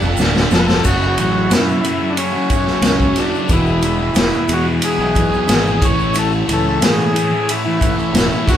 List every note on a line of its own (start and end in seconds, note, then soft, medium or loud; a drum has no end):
0.00 0.18 F1 medium
0.00 0.18 F2 medium
0.00 0.18 F3 medium
0.00 0.81 A3 medium
0.00 0.81 D4 medium
0.00 0.81 A4 medium
0.00 0.80 F#5 medium
0.00 shaker soft
0.17 0.49 D1 medium
0.17 0.51 D2 medium
0.17 0.51 D3 loud
0.17 snare medium
0.17 shaker medium
0.35 snare medium
0.35 shaker soft
0.51 0.82 F1 medium
0.51 0.84 F2 medium
0.51 0.85 F3 medium
0.51 0.60 A4 medium
0.51 snare medium
0.51 shaker medium
0.59 0.66 B4 medium
0.66 0.86 A4 medium
0.66 snare medium
0.66 shaker soft
0.84 1.15 F#1 medium
0.84 1.17 F#2 medium
0.84 1.19 C#3 medium
0.84 1.19 F#3 medium
0.84 3.48 A3 medium
0.84 8.45 E4 medium
0.84 1.19 F#4 medium
0.84 3.48 F#4 medium
0.84 3.48 C#5 medium
0.84 kick medium
0.84 crash medium
0.84 shaker medium
1.01 shaker soft
1.18 1.47 A1 medium
1.18 1.48 F#2 medium
1.18 1.36 C#3 medium
1.18 1.34 F#3 medium
1.18 1.53 F#4 medium
1.18 ride medium
1.18 shaker medium
1.35 1.49 C#3 medium
1.35 1.49 F#3 medium
1.50 1.81 F#2 medium
1.50 1.80 F#2 medium
1.50 1.83 C#3 medium
1.50 1.83 F#3 medium
1.50 snare loud
1.50 ride medium
1.50 shaker medium
1.54 2.13 E4 medium
1.68 shaker soft
1.82 2.33 F#2 medium
1.82 2.01 C#3 medium
1.82 1.99 F#3 medium
1.82 ride medium
1.82 shaker medium
2.00 2.33 C#3 soft
2.00 2.30 F#3 medium
2.10 2.17 D4 medium
2.17 3.20 C#4 medium
2.17 ride medium
2.17 shaker medium
2.32 2.49 C#3 soft
2.32 2.50 F#3 medium
2.50 2.82 F#2 medium
2.50 2.67 C#3 medium
2.50 2.66 F#3 medium
2.50 kick medium
2.50 ride medium
2.50 shaker medium
2.67 2.83 C#3 medium
2.67 2.84 F#3 medium
2.67 snare soft
2.67 shaker soft
2.81 3.12 C#2 medium
2.81 3.14 F#2 medium
2.81 3.00 C#3 medium
2.81 2.98 F#3 medium
2.81 snare medium
2.81 ride medium
2.81 shaker medium
3.00 3.15 C#3 medium
3.00 3.16 F#3 medium
3.00 kick medium
3.00 shaker soft
3.15 3.47 F#2 medium
3.15 3.47 C#3 medium
3.15 3.48 F#3 medium
3.15 3.52 D4 medium
3.15 snare soft
3.15 ride medium
3.15 shaker medium
3.34 shaker soft
3.49 4.09 E1 medium
3.49 3.82 E2 medium
3.49 3.83 B2 medium
3.49 3.84 E3 medium
3.49 5.81 G#3 medium
3.49 5.81 B3 medium
3.49 5.81 G#4 medium
3.49 kick medium
3.49 ride medium
3.49 shaker medium
3.53 4.54 E4 medium
3.66 shaker soft
3.82 4.13 E2 medium
3.82 3.99 B2 medium
3.82 3.98 E3 medium
3.82 ride medium
3.82 shaker medium
3.99 4.15 B2 soft
3.99 4.16 E3 medium
4.14 4.30 E1 medium
4.14 4.46 E2 medium
4.14 4.48 B2 medium
4.14 4.48 E3 medium
4.14 snare loud
4.14 ride medium
4.14 shaker medium
4.33 shaker soft
4.48 4.98 E2 medium
4.48 4.79 E2 medium
4.48 4.65 B2 medium
4.48 4.63 E3 medium
4.48 ride medium
4.48 shaker medium
4.53 4.67 F#4 medium
4.64 5.00 B2 medium
4.64 4.98 E3 medium
4.82 5.86 G#4 medium
4.82 ride medium
4.82 shaker medium
4.98 5.43 B1 medium
4.98 5.15 B2 soft
4.98 5.16 E3 medium
5.15 5.45 E2 medium
5.15 5.31 B2 medium
5.15 5.30 E3 medium
5.15 kick medium
5.15 ride medium
5.15 shaker medium
5.31 5.47 B2 medium
5.31 5.47 E3 medium
5.31 shaker soft
5.46 5.78 G#1 medium
5.46 5.79 E2 medium
5.46 5.65 B2 medium
5.46 5.64 E3 medium
5.46 snare medium
5.46 ride medium
5.46 shaker medium
5.65 5.80 B2 medium
5.65 5.80 E3 medium
5.65 shaker soft
5.80 6.42 A1 medium
5.80 6.13 A2 medium
5.80 6.14 E3 medium
5.80 6.16 A3 loud
5.80 8.45 A3 soft
5.80 8.57 C#4 medium
5.80 8.45 C#5 medium
5.80 kick medium
5.80 ride medium
5.80 shaker medium
5.85 6.18 C#5 medium
5.99 shaker soft
6.14 6.46 A2 medium
6.14 6.47 E3 medium
6.14 6.48 A3 medium
6.14 ride medium
6.14 shaker medium
6.19 6.33 A4 medium
6.32 shaker soft
6.47 6.78 C#2 medium
6.47 6.79 A2 medium
6.47 6.65 E3 medium
6.47 6.64 A3 medium
6.47 ride medium
6.47 shaker medium
6.53 6.85 A4 medium
6.65 6.80 E3 medium
6.65 6.81 A3 medium
6.80 7.12 A2 medium
6.80 7.11 A2 medium
6.80 7.12 E3 medium
6.80 7.14 A3 medium
6.80 snare loud
6.80 ride medium
6.80 shaker medium
6.85 7.52 G#4 medium
6.99 shaker soft
7.13 7.64 A2 medium
7.13 7.32 E3 medium
7.13 7.30 A3 medium
7.13 ride medium
7.17 shaker medium
7.30 7.64 E3 soft
7.30 7.63 A3 medium
7.49 8.52 E4 medium
7.49 ride medium
7.49 shaker medium
7.64 7.79 E3 medium
7.64 7.81 A3 medium
7.79 8.11 A2 medium
7.79 7.97 E3 medium
7.79 7.95 A3 medium
7.79 kick medium
7.79 ride soft
7.79 shaker medium
7.96 8.12 E3 soft
7.96 8.14 A3 medium
7.96 shaker soft
8.12 8.29 E1 medium
8.12 8.45 A2 medium
8.12 8.31 E3 medium
8.12 8.29 A3 loud
8.12 snare loud
8.12 ride medium
8.12 shaker medium
8.29 8.46 E3 soft
8.29 8.47 A3 medium
8.29 shaker soft
8.46 8.57 D1 medium
8.46 8.57 D2 medium
8.46 8.57 A2 medium
8.46 8.57 D3 medium
8.46 8.57 A3 medium
8.46 8.57 D4 soft
8.46 8.57 F#4 medium
8.46 kick medium
8.46 snare soft
8.46 ride soft
8.46 shaker medium